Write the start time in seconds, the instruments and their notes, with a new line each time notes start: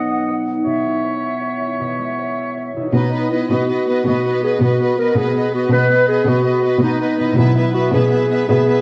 Already playing: harp B2 F#3 B3 D#4 B4, clarinet B3, oboe D#5, flute section F#5
0.09 harp D#5
0.28 harp B4
0.47 harp D#4
0.63 harp B2, oboe C#5, flute section E5
0.85 harp E4
1.04 harp C#5
1.23 harp E5
1.42 harp C#5
1.60 harp E4
1.80 harp B2
1.99 harp G#3
2.19 harp C#5
2.37 harp E5
2.57 harp C#5
2.77 harp B2 E4
2.81 harp D#4
2.86 harp F#4
2.90 cello section B2, clarinet D#4, harp B4, violin section D#5
2.95 viola section B3, violin section B4
3.13 viola section B3, violin section B4 D#5
3.31 viola section B3, clarinet E4, violin section B4 D#5
3.49 cello section B2, viola section B3, clarinet F#4, violin section B4 D#5
3.69 viola section B3, violin section B4 D#5
3.88 viola section B3, violin section B4 D#5
4.05 cello section B2, viola section B3, clarinet F#4, violin section B4 D#5
4.25 viola section B3, violin section B4 D#5
4.44 viola section B3, clarinet G#4, violin section B4 D#5
4.61 cello section B2, viola section B3, clarinet F#4, violin section B4 D#5
4.80 viola section B3, violin section B4 D#5
4.98 viola section B3, clarinet A#4, violin section B4 D#5
5.17 cello section B2, viola section B3, clarinet G#4, violin section B4 D#5
5.35 viola section B3, violin section B4 D#5
5.54 viola section B3, clarinet F#4, violin section B4 D#5
5.72 cello section B2, viola section B3, clarinet B4, violin section B4 D#5
5.90 viola section B3, violin section B4 D#5
6.06 viola section B3, clarinet G#4, violin section D#5
6.11 violin section B4
6.26 cello section B2, viola section B3, clarinet F#4, violin section B4 D#5
6.43 viola section B3, violin section D#5
6.47 violin section B4
6.62 viola section B3, violin section D#5
6.67 violin section B4
6.81 cello section B2, viola section B3, clarinet D#4, violin section B4 D#5
7.00 viola section B3, violin section B4 D#5
7.19 harp B2, viola section B3, violin section B4 D#5
7.25 harp E4
7.30 harp B3
7.37 cello section B2, timpani B2, viola section B3, clarinet E4, violin section B4 E5
7.56 viola section B3, violin section B4 E5
7.74 viola section B3, clarinet F#4, violin section B4 E5
7.93 cello section B2, viola section B3, clarinet G#4, violin section B4 E5
8.11 viola section B3, violin section B4 E5
8.30 viola section B3, violin section B4 E5
8.48 cello section B2, viola section B3, clarinet G#4, violin section B4 E5
8.67 viola section B3, violin section B4 E5